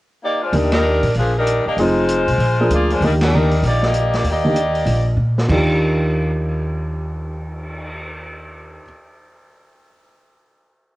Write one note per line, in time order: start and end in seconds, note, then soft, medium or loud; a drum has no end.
0.24 0.41 A#3 medium
0.24 0.41 D#4 medium
0.24 0.41 G4 medium
0.24 0.41 D5 medium
0.42 0.54 G#3 medium
0.42 0.54 D4 medium
0.42 0.54 F4 medium
0.42 0.54 C5 medium
0.53 1.00 D#2 medium
0.53 1.00 D#3 soft
0.53 0.71 G3 medium
0.53 1.00 A#3 soft
0.53 1.00 D4 soft
0.53 0.72 D4 medium
0.53 0.71 D#4 medium
0.53 1.00 G4 soft
0.53 0.71 A#4 medium
0.53 open hi-hat soft
0.72 1.12 G3 medium
0.72 1.12 D4 medium
0.72 1.12 D#4 medium
0.72 1.12 A#4 medium
0.72 snare medium
0.72 ride medium
1.03 1.14 A#2 medium
1.03 open hi-hat soft
1.14 1.62 A#1 medium
1.14 1.34 F3 medium
1.14 1.34 A#3 medium
1.14 1.34 D4 medium
1.14 1.34 G#4 medium
1.14 open hi-hat soft
1.38 1.66 G3 medium
1.38 1.66 D4 medium
1.38 1.66 D#4 medium
1.38 1.66 A#4 medium
1.47 closed hi-hat medium
1.66 1.77 A#3 medium
1.66 1.77 D4 medium
1.66 1.77 G4 medium
1.66 1.77 D#5 medium
1.66 muted upright bass stroke soft
1.77 2.24 F1 medium
1.77 2.25 F3 medium
1.77 2.71 G#3 medium
1.77 2.25 C4 soft
1.77 2.40 D#4 medium
1.77 2.25 D#4 medium
1.77 2.71 F4 medium
1.77 2.25 G#4 medium
1.77 2.72 C5 medium
1.77 open hi-hat soft
2.08 closed hi-hat medium
2.28 2.37 B1 medium
2.28 open hi-hat soft
2.38 2.68 A#1 medium
2.38 open hi-hat soft
2.60 3.00 F3 medium
2.60 3.00 A#3 medium
2.60 3.00 D4 soft
2.60 3.00 G#4 medium
2.70 2.99 D2 medium
2.70 2.90 A#3 medium
2.70 2.90 G#4 medium
2.70 2.90 D5 medium
2.70 closed hi-hat medium
2.74 2.90 F4 medium
2.90 3.03 G#3 medium
2.90 3.03 D4 medium
2.90 3.03 F4 medium
2.90 3.03 C5 medium
2.90 open hi-hat soft
3.00 3.60 D#2 medium
3.00 3.32 D#3 medium
3.00 3.32 A#3 soft
3.00 3.32 D4 soft
3.00 3.13 D#4 medium
3.00 3.32 G4 medium
3.00 open hi-hat soft
3.05 3.13 G3 medium
3.05 3.13 D4 medium
3.05 3.13 A#4 medium
3.21 3.62 G3 medium
3.21 3.62 D4 medium
3.21 3.62 D#4 medium
3.21 3.62 A#4 medium
3.21 snare medium
3.21 ride medium
3.33 3.50 D#3 medium
3.33 3.51 A#3 medium
3.33 3.51 D4 soft
3.33 3.51 G4 medium
3.51 open hi-hat soft
3.62 4.22 A#1 medium
3.62 3.83 G4 medium
3.62 3.82 D5 medium
3.62 open hi-hat soft
3.66 3.82 A#3 medium
3.66 3.84 D#4 medium
3.82 4.14 A#3 medium
3.82 4.15 G4 medium
3.82 4.14 D5 medium
3.82 4.14 D#5 medium
3.82 snare medium
3.94 closed hi-hat medium
4.13 4.27 A#3 medium
4.13 4.27 D#4 medium
4.13 4.27 G4 medium
4.13 4.27 D5 medium
4.13 snare soft
4.13 open hi-hat soft
4.24 4.83 D#2 medium
4.24 open hi-hat soft
4.30 5.17 A#3 medium
4.30 5.17 G4 medium
4.30 5.17 D5 medium
4.30 5.17 D#5 medium
4.44 4.55 D#3 medium
4.44 4.55 A#3 medium
4.44 4.55 D4 medium
4.44 4.56 G4 medium
4.56 closed hi-hat soft
4.75 open hi-hat soft
4.86 5.15 A#1 medium
4.86 open hi-hat soft
5.17 5.46 A#2 medium
5.38 snare medium
5.48 8.81 D#2 medium
5.48 8.77 D#2 medium
5.48 8.82 D#3 medium
5.48 8.82 D4 soft
5.48 8.84 F4 soft
5.48 8.84 G4 medium
5.48 kick medium
5.48 crash medium
5.69 cymbal swell medium